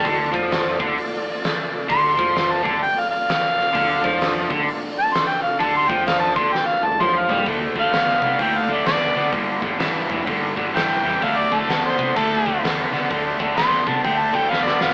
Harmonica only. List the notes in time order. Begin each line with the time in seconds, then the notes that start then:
Already playing: A5
1.91 C6
2.52 A5
2.66 A5
2.82 G5
2.99 F5
3.10 F5
4.99 A5
5.14 C6
5.27 G5
5.43 F5
5.60 A5
5.77 C6
5.90 G5
6.07 F5
6.20 A5
6.36 C6
6.53 G5
6.66 F5
6.85 A5
7.03 C6
7.19 F5
7.80 F5
8.42 G5
8.58 F5
8.73 D5
8.87 D5
10.76 G5
11.23 F5
11.37 D5
11.54 A4
11.85 C5
12.16 A4
13.57 C6
13.89 A5
14.04 G5
14.19 A5
14.36 G5
14.49 F5
14.65 D5
14.83 F5